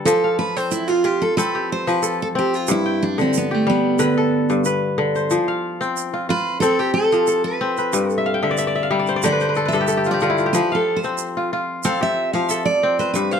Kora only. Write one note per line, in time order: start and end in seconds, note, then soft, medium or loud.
0.00 0.10 D3 medium
0.00 0.10 G3 medium
0.00 0.33 G4 medium
0.00 1.06 A4 medium
0.00 0.63 B4 medium
0.06 1.86 F3 medium
0.24 1.24 F5 medium
0.57 1.37 C4 medium
0.90 1.04 F4 medium
1.05 2.56 F4 medium
1.38 2.35 C4 medium
1.38 2.02 A4 medium
1.55 2.96 G4 medium
1.87 2.73 F3 medium
2.03 3.34 A4 medium
2.35 4.05 C4 medium
2.68 4.49 G2 medium
2.86 3.79 G5 medium
3.18 3.98 D3 medium
3.51 4.92 G4 medium
3.67 4.05 G3 medium
3.99 4.97 D3 medium
3.99 4.65 B4 medium
4.17 5.49 A4 medium
4.50 5.36 G2 medium
4.66 5.22 B4 medium
4.98 5.36 D3 medium
5.16 6.34 C5 medium
5.31 7.11 F3 medium
5.48 6.48 F5 medium
5.81 6.62 C4 medium
6.14 6.29 F4 medium
6.29 7.80 F4 medium
6.62 7.60 C4 medium
6.62 7.27 A4 medium
6.79 8.21 G4 medium
7.12 7.98 F3 medium
7.28 8.59 A4 medium
7.61 9.38 C4 medium
7.78 9.01 B4 medium
7.93 9.72 G2 medium
8.18 8.43 E5 medium
8.26 8.49 F5 medium
8.34 9.27 G5 medium
8.43 9.23 D3 medium
8.43 8.58 E5 medium
8.51 8.67 D5 medium
8.58 8.75 E5 medium
8.67 8.99 D5 medium
8.75 8.90 E5 medium
8.83 9.83 F5 medium
8.91 9.28 G3 medium
8.91 9.94 E5 medium
8.99 9.16 D5 medium
9.09 9.23 C5 medium
9.16 10.27 D5 medium
9.24 10.21 D3 medium
9.24 9.41 C5 medium
9.32 9.49 B4 medium
9.41 9.71 C5 medium
9.49 9.65 B4 medium
9.56 9.73 A4 medium
9.65 10.88 B4 medium
9.73 10.59 G2 medium
9.73 9.88 A4 medium
9.81 9.97 G4 medium
9.88 11.20 A4 medium
9.97 10.13 G4 medium
10.06 10.22 F4 medium
10.14 10.46 G4 medium
10.22 10.59 D3 medium
10.22 10.38 F4 medium
10.30 10.60 E4 medium
10.38 11.37 F4 medium
10.46 11.87 G4 medium
10.54 12.33 F3 medium
10.72 11.72 F5 medium
11.04 11.84 C4 medium
11.37 11.52 F4 medium
11.53 13.04 F4 medium
11.85 12.83 C4 medium
11.85 12.50 A4 medium
12.01 13.40 G4 medium
12.34 13.19 F3 medium
12.50 13.40 A4 medium
12.83 13.40 C4 medium
13.00 13.40 B4 medium
13.15 13.40 G2 medium
13.33 13.40 F5 medium